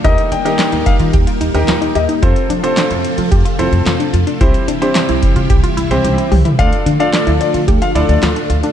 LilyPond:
<<
  \new Staff \with { instrumentName = "Grand piano" } { \time 4/4 \key d \minor \tempo 4 = 110 ees''8 g''8. r16 f''16 r4. r16 ees''16 r16 | r1 | r1 | f''8 r16 f''16 d''8 d''16 r8 f''16 r16 d''16 r4 | }
  \new Staff \with { instrumentName = "Grand piano" } { \time 4/4 \key d \minor <ees' g' bes' ees''>8 r16 <ees' g' bes' ees''>4~ <ees' g' bes' ees''>16 r8. <ees' g' bes' ees''>8. r8 | <c' f' a' c''>8 r16 <c' f' a' c''>4 r8. <c' f' a' c''>4 r8 | <c' e' g' c''>8 r16 <c' e' g' c''>4~ <c' e' g' c''>16 r8. <c' e' g' c''>8. r8 | <d' f' a' d''>8 r16 <d' f' a' d''>4 r8. <d' f' a' d''>4 r8 | }
  \new Staff \with { instrumentName = "Synth arpeggio sound" } { \time 4/4 \key d \minor ees'8 d'16 d'16 d'16 ees'8 f'16 g'16 f'16 ees'8 f'16 ees'16 g'16 ees'16 | f'8 d'16 d'16 d'16 e'8 f'16 g'16 f'16 e'8 f'16 d'16 f'16 d'16 | e'8 d'16 d'16 d'16 e'8 f'16 g'16 f'16 e'8 g'16 e'16 g'16 e'16 | f'8 d'16 d'16 d'16 e'8 f'16 g'16 f'16 e'8 f'16 d'16 f'16 d'16 | }
  \new Staff \with { instrumentName = "String machine" } { \time 4/4 \key d \minor << { <g bes g' bes'>1 | <f a f' a'>1 | <e g e' g'>1 | <f a f' a'>1 | } \\ { ees1 | c1~ | c1 | d1 | } >> }
  \new Staff \with { instrumentName = "Upright bass" } { \clef bass \time 4/4 \key d \minor ees,16 r16 ees16 r8 ees,16 r16 ees16 ees,16 r16 ees,16 ees,16 ees,16 r16 ees,16 r16 | f,16 r16 f16 r8 f,16 r16 f16 f,16 r16 f,16 f,16 f,16 r16 f,16 r16 | c,16 r16 c16 r8 c,16 r16 c16 c,16 r16 c,16 c,16 c,16 r16 c,16 r16 | d,16 r16 d16 r8 d,16 r16 d16 d,16 r16 d,16 d,16 d,16 r16 d,16 r16 | }
  \new DrumStaff \with { instrumentName = "Drums" } \drummode { \time 4/4 <hh bd>16 hh16 hh16 hh16 <hc hh sn>16 hh16 <hh bd>16 hh16 <hh bd>16 hh16 hh16 hh16 <hc hh sn>16 hh16 hh16 hh16 | <hh bd>16 hh16 hh16 hh16 <hc hh sn>16 hh16 hh16 hh16 <hh bd>16 hh16 hh16 hh16 <hc hh sn>16 hh16 hh16 hh16 | <hh bd>16 hh16 hh16 hh16 <hc hh sn>16 hh16 <hh bd>16 hh16 <hh bd>16 hh16 hh16 hh16 <hh tommh>16 hh16 <hho toml>16 <hh tomfh>16 | <hh bd>16 hh16 hh16 hh16 <hc hh sn>16 hh16 hh16 hh16 <hh bd>16 hh16 hh16 hh16 <hc hh sn>16 hh16 hh16 hh16 | }
>>